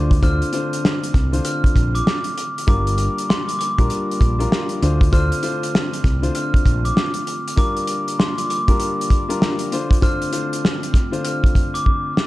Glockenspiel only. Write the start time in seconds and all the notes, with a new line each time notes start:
0.23 F6
1.45 F6
1.95 D6
2.68 D6
3.29 C6
3.48 D6
3.59 D6
5.13 F6
6.35 F6
6.85 D6
7.58 D6
8.19 C6
8.37 D6
8.50 D6
10.03 F6
11.24 F6
11.74 D6